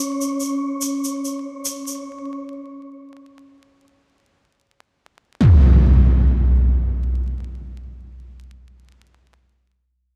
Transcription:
0.00 2.09 C#4 medium
0.00 2.09 C#5 medium
0.21 shaker soft
0.40 shaker soft
0.82 shaker medium
1.04 shaker soft
1.25 shaker soft
1.65 shaker medium
1.87 shaker soft
5.40 impact medium

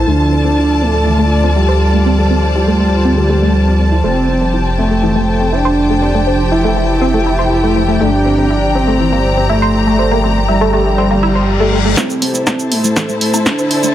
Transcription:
0.00 4.00 A4 medium
0.00 1.35 C5 medium
0.00 7.97 A5 medium
0.00 8.01 A5 medium
0.07 4.02 D2 medium
0.07 11.93 F3 medium
0.07 0.17 A3 loud
0.07 0.83 D4 loud
0.07 4.83 F4 medium
0.07 2.04 D5 medium
0.23 4.92 D5 medium
0.32 0.43 C4 medium
0.45 0.54 C4 medium
0.57 0.66 E4 medium
0.82 1.46 A3 loud
0.82 0.91 C4 medium
0.94 1.03 A3 medium
1.06 1.18 E3 medium
1.19 1.24 A3 loud
1.44 1.53 C4 medium
1.56 2.45 G3 loud
1.56 1.65 E4 medium
1.69 1.78 C5 medium
1.93 2.02 A3 medium
2.05 2.18 C4 medium
2.05 4.02 C5 medium
2.18 2.24 A3 loud
2.30 2.40 C4 medium
2.55 3.94 G3 loud
2.55 2.65 E4 medium
2.68 2.79 A3 loud
2.80 2.89 A3 loud
3.05 3.14 C4 loud
3.17 3.23 A3 loud
3.29 3.35 A3 loud
3.42 3.54 A3 loud
3.67 3.72 C4 medium
3.79 3.89 C4 medium
3.92 3.97 E4 medium
4.04 7.98 F1 medium
4.04 4.13 A3 loud
4.04 4.69 C4 loud
4.04 12.88 G4 medium
4.04 7.97 C5 medium
4.04 11.93 G5 medium
4.21 11.97 G5 medium
4.29 4.40 C4 medium
4.41 4.50 C4 medium
4.54 4.63 E4 medium
4.78 5.54 A3 loud
4.78 4.88 C4 medium
4.91 5.00 A3 medium
5.03 5.15 E3 medium
5.16 5.21 A3 loud
5.40 5.50 C4 medium
5.53 6.42 D4 loud
5.53 5.62 E4 medium
5.65 5.74 C5 loud
5.90 5.99 A3 medium
6.02 6.14 C4 medium
6.15 6.20 A3 loud
6.27 6.36 C4 medium
6.52 6.61 E4 medium
6.52 8.02 E4 loud
6.64 6.75 A3 loud
6.77 6.86 A3 loud
7.01 7.11 C4 loud
7.14 7.19 A3 loud
7.26 7.32 E4 loud
7.39 7.50 C5 medium
7.64 7.74 A3 loud
7.76 7.81 A3 medium
7.88 7.99 A3 medium
8.01 11.95 G1 medium
8.01 8.10 A3 loud
8.01 8.77 D4 loud
8.01 11.93 D5 medium
8.01 11.93 A#5 medium
8.25 8.37 C4 medium
8.35 8.47 C4 medium
8.35 11.97 A#5 medium
8.50 8.60 E4 medium
8.75 9.40 C4 loud
8.75 8.84 C4 medium
8.87 8.97 A3 medium
9.00 9.12 E3 medium
9.12 9.18 A#3 loud
9.37 9.46 C4 medium
9.49 10.39 A3 loud
9.49 9.59 E4 medium
9.62 9.71 C5 loud
9.87 9.96 A3 medium
9.99 10.11 C4 medium
10.11 10.17 A#3 loud
10.24 10.33 C4 medium
10.48 11.88 G3 loud
10.48 10.58 E4 medium
10.61 10.72 A3 loud
10.73 10.83 A3 loud
10.98 11.07 C4 loud
10.98 reverse cymbal medium
11.11 11.16 A#3 loud
11.23 11.29 E4 loud
11.35 11.47 C5 medium
11.60 11.71 A3 loud
11.73 11.78 A3 medium
11.85 11.96 A3 medium
11.97 12.28 A1 medium
11.97 12.07 A3 loud
11.97 12.73 C4 loud
11.97 13.95 E4 medium
11.97 13.95 A4 medium
11.97 13.95 C5 medium
11.97 13.95 A5 medium
11.97 kick loud
11.97 snare soft
11.97 riser medium
11.97 shaker medium
12.10 shaker soft
12.22 12.33 C4 medium
12.22 open hi-hat loud
12.27 13.95 C5 medium
12.35 12.65 A1 medium
12.35 12.44 C4 medium
12.35 shaker medium
12.47 12.56 E4 medium
12.47 kick loud
12.47 snare soft
12.47 low woodblock soft
12.47 shaker medium
12.52 13.95 A5 medium
12.59 shaker soft
12.72 13.02 A1 medium
12.72 13.47 A3 loud
12.72 12.81 C4 medium
12.72 open hi-hat medium
12.84 12.93 A3 medium
12.84 shaker medium
12.96 13.08 E3 medium
12.96 kick loud
12.96 snare soft
12.96 shaker medium
13.09 13.14 A3 loud
13.09 shaker soft
13.21 13.30 A1 medium
13.21 open hi-hat loud
13.34 13.43 C4 medium
13.34 low woodblock soft
13.34 shaker medium
13.46 13.95 D4 loud
13.46 13.55 E4 medium
13.46 kick loud
13.46 snare medium
13.46 shaker medium
13.59 13.89 A2 medium
13.59 13.68 C5 loud
13.59 shaker soft
13.71 open hi-hat medium
13.83 13.93 A3 medium
13.83 shaker medium

